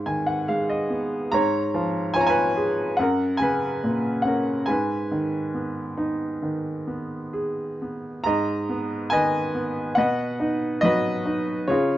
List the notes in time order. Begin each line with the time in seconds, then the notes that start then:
Already playing: G#2 F4 C#5
0.06 D#3 G#5
0.27 F#5
0.48 G#3 F5
0.70 D#5
0.90 B3
1.32 G#2 C#5 A#5
1.74 F3
2.14 F4 C#5 G#5
2.21 A#5
2.27 B4 G#5
2.57 G#4
2.97 F#2 F#5
3.01 A#4
3.37 C#3 G#5
3.42 B4
3.84 A#2
4.22 C#4 F#5
4.27 A#4
4.66 G#2 G#5
4.70 B4
5.11 D#3
5.54 B3
5.97 D#4
6.42 D#3
6.87 B3
7.33 G#4
7.82 B3
8.24 G#2 D#5 A#5
8.69 B3
9.10 D#3 B4 D#5 G#5
9.55 B3
9.95 B2 B4 D#5 F#5
10.40 D#4
10.81 F#3 F#4 B4 D#5
11.26 D#4
11.68 C#3 F4 G#4 C#5